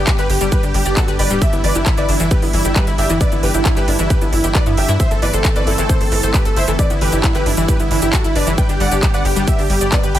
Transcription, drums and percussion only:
0.07 kick, clap, closed hi-hat, shaker
0.18 clap, closed hi-hat, shaker
0.30 open hi-hat
0.41 closed hi-hat, shaker
0.52 kick, closed hi-hat, shaker
0.63 closed hi-hat, shaker
0.74 open hi-hat
0.85 closed hi-hat, shaker
0.97 kick, clap, closed hi-hat, shaker
1.08 closed hi-hat, shaker
1.19 open hi-hat
1.30 closed hi-hat, shaker
1.42 kick, closed hi-hat, shaker
1.53 closed hi-hat, shaker
1.64 open hi-hat
1.75 closed hi-hat, shaker
1.86 kick, clap, closed hi-hat, shaker
1.97 closed hi-hat, shaker
2.09 open hi-hat
2.20 closed hi-hat, shaker
2.31 kick, closed hi-hat, shaker
2.42 open hi-hat, shaker
2.53 open hi-hat
2.65 closed hi-hat, shaker
2.76 kick, clap, closed hi-hat, shaker
2.87 closed hi-hat, shaker
2.98 open hi-hat
3.10 closed hi-hat, shaker
3.21 kick, closed hi-hat, shaker
3.32 closed hi-hat, shaker
3.43 open hi-hat
3.54 closed hi-hat, shaker
3.65 kick, clap, closed hi-hat, shaker
3.77 clap, closed hi-hat, shaker
3.88 open hi-hat
3.99 closed hi-hat, shaker
4.10 kick, closed hi-hat, shaker
4.21 closed hi-hat, shaker
4.33 open hi-hat
4.44 closed hi-hat, shaker
4.55 kick, clap, closed hi-hat, shaker
4.66 closed hi-hat, shaker
4.77 open hi-hat
4.89 closed hi-hat, shaker
5.00 kick, closed hi-hat, shaker
5.11 closed hi-hat, shaker
5.22 open hi-hat
5.33 closed hi-hat, shaker
5.45 kick, clap, closed hi-hat, shaker
5.56 closed hi-hat, shaker
5.67 open hi-hat
5.78 closed hi-hat, shaker
5.89 kick, closed hi-hat, shaker
6.01 open hi-hat, shaker
6.12 open hi-hat
6.23 closed hi-hat, shaker
6.34 kick, clap, closed hi-hat, shaker
6.45 closed hi-hat, shaker
6.56 open hi-hat
6.68 closed hi-hat, shaker
6.79 kick, closed hi-hat, shaker
6.90 closed hi-hat, shaker
7.01 open hi-hat
7.12 closed hi-hat, shaker
7.24 kick, clap, closed hi-hat, shaker
7.35 clap, closed hi-hat, shaker
7.46 open hi-hat
7.57 closed hi-hat, shaker
7.68 kick, closed hi-hat, shaker
7.80 closed hi-hat, shaker
7.91 open hi-hat
8.02 closed hi-hat, shaker
8.13 kick, clap, closed hi-hat, shaker
8.24 closed hi-hat, shaker
8.35 open hi-hat
8.47 closed hi-hat, shaker
8.58 kick, closed hi-hat, shaker
8.69 closed hi-hat, shaker
8.80 open hi-hat
8.91 closed hi-hat, shaker
9.03 kick, clap, closed hi-hat, shaker
9.14 closed hi-hat, shaker
9.25 open hi-hat
9.36 closed hi-hat, shaker
9.47 kick, closed hi-hat, shaker
9.59 open hi-hat, shaker
9.70 open hi-hat
9.81 closed hi-hat, shaker
9.92 kick, clap, closed hi-hat, shaker
10.03 closed hi-hat, shaker
10.15 open hi-hat

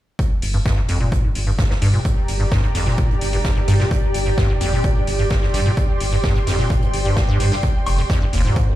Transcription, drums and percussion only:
0.19 kick, closed hi-hat
0.42 closed hi-hat, open hi-hat
0.66 kick, snare, closed hi-hat
0.88 closed hi-hat, open hi-hat
1.12 kick, closed hi-hat
1.35 closed hi-hat, open hi-hat
1.58 kick, snare, closed hi-hat
1.70 snare
1.82 closed hi-hat, open hi-hat
2.05 kick, closed hi-hat
2.28 closed hi-hat, open hi-hat
2.51 kick, snare, closed hi-hat
2.63 closed hi-hat
2.75 snare, closed hi-hat, open hi-hat
2.87 snare
2.98 kick, closed hi-hat
3.11 closed hi-hat
3.21 closed hi-hat, open hi-hat
3.33 open hi-hat
3.44 kick, snare, closed hi-hat
3.68 closed hi-hat, open hi-hat
3.80 snare
3.91 kick, closed hi-hat
4.14 closed hi-hat, open hi-hat
4.38 kick, snare, closed hi-hat
4.60 closed hi-hat, open hi-hat
4.84 kick, closed hi-hat
5.07 closed hi-hat, open hi-hat
5.30 kick, snare, closed hi-hat
5.43 snare
5.54 closed hi-hat, open hi-hat
5.77 kick, closed hi-hat
6.00 closed hi-hat, open hi-hat
6.24 kick, snare, closed hi-hat
6.35 closed hi-hat
6.47 snare, closed hi-hat, open hi-hat
6.58 snare
6.70 kick, closed hi-hat
6.82 closed hi-hat
6.94 closed hi-hat, open hi-hat
7.05 open hi-hat
7.16 kick, snare, closed hi-hat
7.40 closed hi-hat, open hi-hat
7.52 snare
7.63 kick, closed hi-hat
7.86 closed hi-hat, open hi-hat, high woodblock
8.10 kick, snare, closed hi-hat
8.33 closed hi-hat, open hi-hat
8.56 kick, closed hi-hat

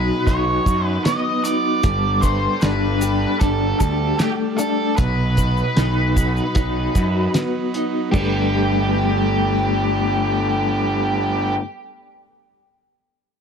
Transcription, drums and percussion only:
0.27 kick, closed hi-hat, shaker
0.66 kick, closed hi-hat, shaker
1.05 snare, closed hi-hat, shaker
1.45 closed hi-hat, shaker
1.83 kick, closed hi-hat, shaker
2.23 kick, closed hi-hat, shaker
2.61 snare, closed hi-hat, shaker
3.01 closed hi-hat, shaker
3.41 kick, closed hi-hat, shaker
3.80 kick, closed hi-hat, shaker
4.19 snare, closed hi-hat, shaker
4.59 closed hi-hat, shaker
4.98 kick, closed hi-hat, shaker
5.37 kick, snare, closed hi-hat, shaker
5.57 shaker
5.77 snare, closed hi-hat, shaker
6.17 kick, closed hi-hat, shaker
6.37 shaker
6.55 kick, closed hi-hat, shaker
6.95 kick, closed hi-hat, shaker
7.34 snare, closed hi-hat, shaker
7.74 closed hi-hat
8.13 kick, crash, shaker

